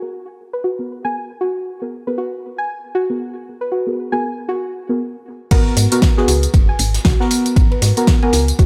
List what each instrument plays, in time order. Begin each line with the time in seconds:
0.02 synth stab B3 F#4 G#4 A#4
0.53 synth arpeggio sound B4
0.64 synth arpeggio sound F#4
0.79 synth stab B3 F#4 G#4 A#4
1.05 synth stab B3 F#4 G#4 A#4, synth arpeggio sound G#5
1.41 synth arpeggio sound F#4
1.81 synth stab B3 F#4 G#4 A#4
2.07 synth stab B3 F#4 G#4 A#4, synth arpeggio sound B4
2.18 synth arpeggio sound F#4
2.58 synth arpeggio sound G#5
2.95 synth arpeggio sound F#4
3.10 synth stab B3 F#4 G#4 A#4
3.61 synth arpeggio sound B4
3.72 synth arpeggio sound F#4
3.87 synth stab B3 F#4 G#4 A#4
4.12 synth stab B3 F#4 G#4 A#4, synth arpeggio sound G#5
4.49 synth arpeggio sound F#4
4.89 synth stab B3 F#4 G#4 A#4
5.51 fm bass G#1, synth stab B3 F#4 A#4, synth arpeggio sound F#4, kick, closed hi-hat, crash, ride, tambourine
5.77 fm bass G#2, open hi-hat, ride, tambourine
5.92 synth stab B3 F#4 A#4, closed hi-hat, ride, tambourine
6.02 kick, snare, closed hi-hat, ride, tambourine
6.17 synth stab B3 F#4 G#4, synth arpeggio sound B4, snare
6.28 fm bass C#2, synth arpeggio sound F#4, open hi-hat, ride, tambourine
6.43 closed hi-hat, tambourine
6.54 fm bass F#1, kick, closed hi-hat, ride, tambourine
6.69 synth arpeggio sound G#5
6.79 fm bass G#1, open hi-hat, ride, tambourine
6.94 snare, closed hi-hat, tambourine
7.05 fm bass B1, synth arpeggio sound F#4, kick, snare, closed hi-hat, ride, tambourine
7.20 synth stab B3 F#4 A#4, snare
7.31 open hi-hat, ride, tambourine
7.46 closed hi-hat, tambourine
7.56 fm bass G#1, kick, closed hi-hat, ride, tambourine
7.71 synth arpeggio sound B4, ride
7.82 fm bass G#2, synth arpeggio sound F#4, snare, open hi-hat, ride, tambourine
7.97 synth stab B3 F#4 A#4, closed hi-hat, tambourine
8.07 kick, snare, closed hi-hat, ride, tambourine
8.22 synth stab B3 F#4 A#4, synth arpeggio sound G#5, ride
8.33 fm bass C#2, snare, open hi-hat, ride, tambourine
8.48 closed hi-hat, tambourine
8.59 fm bass F#1, synth arpeggio sound F#4, kick, closed hi-hat, ride, tambourine